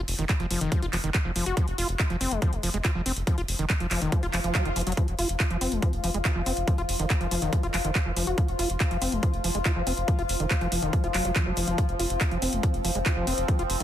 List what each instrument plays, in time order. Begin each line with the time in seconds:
0.08 analog synth bass F1, open hi-hat
0.19 analog synth bass F1, acid bass D#3, closed hi-hat
0.29 acid bass F#3, kick, clap, closed hi-hat
0.40 analog synth bass F1, acid bass F3, closed hi-hat
0.51 analog synth bass F1, acid bass F3, open hi-hat
0.61 analog synth bass F1, acid bass D#3, closed hi-hat
0.72 acid bass F3, kick, closed hi-hat
0.82 analog synth bass F1, acid bass F4, closed hi-hat
0.93 analog synth bass F1, acid bass F3, clap, open hi-hat
1.04 analog synth bass F1, acid bass D#3, closed hi-hat
1.14 acid bass F#3, kick, clap, closed hi-hat
1.25 analog synth bass F1, acid bass F3
1.36 analog synth bass F1, acid bass F3, open hi-hat
1.46 analog synth bass F1, acid bass F#4, closed hi-hat
1.57 acid bass F3, kick, closed hi-hat
1.68 analog synth bass F1, closed hi-hat
1.78 analog synth bass F1, acid bass F4, open hi-hat
1.89 analog synth bass F1, closed hi-hat
1.99 kick, clap, closed hi-hat
2.10 analog synth bass F1, acid bass F3, closed hi-hat
2.21 analog synth bass F1, acid bass C4, open hi-hat
2.31 analog synth bass F1, acid bass G#3, closed hi-hat
2.42 acid bass F3, kick, closed hi-hat
2.53 analog synth bass F1, closed hi-hat
2.63 analog synth bass F1, acid bass F3, open hi-hat
2.74 analog synth bass F1, acid bass G#3, closed hi-hat
2.85 acid bass F4, kick, clap, closed hi-hat
2.95 analog synth bass F1, acid bass F3
3.06 analog synth bass F1, acid bass C4, open hi-hat
3.16 analog synth bass F1, closed hi-hat
3.27 acid bass F3, kick, closed hi-hat
3.38 analog synth bass F1, acid bass F4, closed hi-hat
3.48 analog synth bass F1, open hi-hat
3.59 analog synth bass F1, acid bass D#3, closed hi-hat
3.70 acid bass F#3, kick, clap, closed hi-hat
3.80 analog synth bass F1, acid bass F3, closed hi-hat
3.91 analog synth bass F1, acid bass F3, clap, open hi-hat
4.02 analog synth bass F1, acid bass D#3, closed hi-hat
4.12 acid bass F3, kick, closed hi-hat, swell
4.23 analog synth bass F1, acid bass F4, closed hi-hat
4.34 analog synth bass F1, acid bass F3, clap, open hi-hat
4.44 analog synth bass F1, acid bass F3, closed hi-hat
4.55 acid bass F#3, kick, clap, closed hi-hat
4.65 analog synth bass F1, acid bass D#3, closed hi-hat
4.76 analog synth bass F1, acid bass F3, closed hi-hat, open hi-hat
4.81 closed hi-hat
4.87 analog synth bass F1, acid bass F#3, closed hi-hat
4.92 closed hi-hat
4.97 acid bass F3, synth texture F3 F4, kick, closed hi-hat
5.08 analog synth bass F1, closed hi-hat
5.19 analog synth bass F1, acid bass F4, open hi-hat
5.29 analog synth bass F1, closed hi-hat
5.40 kick, clap, closed hi-hat
5.51 analog synth bass F1, acid bass F3, closed hi-hat
5.61 analog synth bass F1, acid bass C4, open hi-hat
5.72 analog synth bass F1, acid bass G#3, closed hi-hat
5.82 acid bass F3, kick, closed hi-hat
5.93 analog synth bass F1, closed hi-hat
6.04 analog synth bass F1, acid bass F3, open hi-hat
6.14 analog synth bass F1, acid bass G#3, closed hi-hat
6.25 acid bass F4, kick, clap, closed hi-hat
6.36 analog synth bass F1, acid bass F3
6.46 analog synth bass F1, acid bass C4, open hi-hat
6.57 analog synth bass F1, closed hi-hat
6.68 acid bass F3, kick, closed hi-hat
6.78 analog synth bass F1, acid bass F4, closed hi-hat
6.89 analog synth bass F1, open hi-hat
6.99 analog synth bass F1, acid bass D#3, closed hi-hat
7.10 acid bass F#3, kick, clap, closed hi-hat
7.21 analog synth bass F1, acid bass F3, closed hi-hat
7.31 analog synth bass F1, acid bass F3, open hi-hat
7.42 analog synth bass F1, acid bass D#3, closed hi-hat
7.53 acid bass F3, kick, closed hi-hat
7.63 analog synth bass F1, acid bass F4, closed hi-hat
7.74 analog synth bass F1, acid bass F3, clap, open hi-hat
7.85 analog synth bass F1, acid bass D#3, closed hi-hat
7.95 acid bass F#3, kick, clap, closed hi-hat
8.06 analog synth bass F1, acid bass F3
8.16 analog synth bass F1, acid bass F3, open hi-hat
8.27 analog synth bass F1, acid bass F#4, closed hi-hat
8.38 acid bass F3, kick, closed hi-hat
8.48 analog synth bass F1, closed hi-hat
8.59 analog synth bass F1, acid bass F4, open hi-hat
8.70 analog synth bass F1, closed hi-hat
8.80 kick, clap, closed hi-hat
8.91 analog synth bass F1, acid bass F3, closed hi-hat
9.02 analog synth bass F1, acid bass C4, open hi-hat
9.12 analog synth bass F1, acid bass G#3, closed hi-hat
9.23 acid bass F3, kick, closed hi-hat
9.34 analog synth bass F1, closed hi-hat
9.44 analog synth bass F1, acid bass F3, open hi-hat
9.55 analog synth bass F1, acid bass G#3, closed hi-hat
9.65 acid bass F4, kick, clap, closed hi-hat
9.76 analog synth bass F1, acid bass F3
9.87 analog synth bass F1, acid bass C4, open hi-hat
9.97 analog synth bass F1, closed hi-hat
10.08 acid bass F3, kick, closed hi-hat
10.19 analog synth bass F1, acid bass F4, closed hi-hat
10.29 analog synth bass F1, open hi-hat
10.40 analog synth bass F1, acid bass D#3, closed hi-hat
10.51 acid bass F#3, kick, clap, closed hi-hat
10.61 analog synth bass F1, acid bass F3, closed hi-hat
10.72 analog synth bass F1, acid bass F3, open hi-hat
10.82 analog synth bass F1, acid bass D#3, closed hi-hat
10.93 acid bass F3, kick, closed hi-hat
11.04 analog synth bass F1, acid bass F4, closed hi-hat
11.14 analog synth bass F1, acid bass F#3, clap, open hi-hat
11.25 analog synth bass F1, acid bass F#3, closed hi-hat
11.36 acid bass F3, kick, clap, closed hi-hat
11.46 analog synth bass F1, acid bass F#3
11.57 analog synth bass F1, acid bass F3, open hi-hat
11.68 analog synth bass F1, acid bass F3, closed hi-hat
11.78 synth texture C4, kick, closed hi-hat
11.89 analog synth bass F1, closed hi-hat
12.00 analog synth bass F1, acid bass F4, open hi-hat
12.10 analog synth bass F1, closed hi-hat
12.21 kick, clap, closed hi-hat
12.31 analog synth bass F1, acid bass F3, closed hi-hat
12.42 analog synth bass F1, acid bass C4, open hi-hat
12.53 analog synth bass F1, acid bass G#3, closed hi-hat
12.63 acid bass F3, kick, closed hi-hat
12.74 analog synth bass F1, closed hi-hat
12.85 analog synth bass F1, acid bass F3, open hi-hat
12.95 analog synth bass F1, acid bass G#3, closed hi-hat
13.06 acid bass F4, kick, clap, closed hi-hat
13.17 analog synth bass F1, acid bass F3
13.27 analog synth bass F1, acid bass C4, open hi-hat
13.38 analog synth bass F1, closed hi-hat
13.48 acid bass F3, kick, closed hi-hat
13.59 analog synth bass F1, acid bass F4, closed hi-hat
13.70 analog synth bass F1, open hi-hat
13.80 analog synth bass F1, acid bass D#3, closed hi-hat